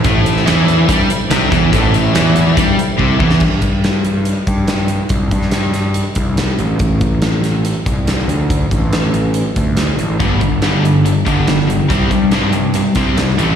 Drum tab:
CC |----------------|----------------|x---------------|----------------|
HH |x-x-x-x-x-x-x-x-|x-x-x-x-x-x-----|--x-x-x-x-x-x-x-|x-x-x-x-x-x-x-x-|
SD |---oo-------o-o-|----o----------o|----o-------o---|---oo-o-----o---|
BD |o-------o-----o-|o-------o---o-o-|o-o-------o-----|o-o-------o-----|

CC |----------------|----------------|----------------|----------------|
HH |x-x-x-x-x-x-x-x-|x-x-x-x-x-x-x-x-|x-x-x-x-x-x-x-x-|x-x-x-x-x-x-x-x-|
SD |----o-o-----oo--|----o-------o---|----o-------oo--|----o-------oo--|
BD |o-o-------o-----|o-o-------o-----|o-o-------o-----|o-o-------o-----|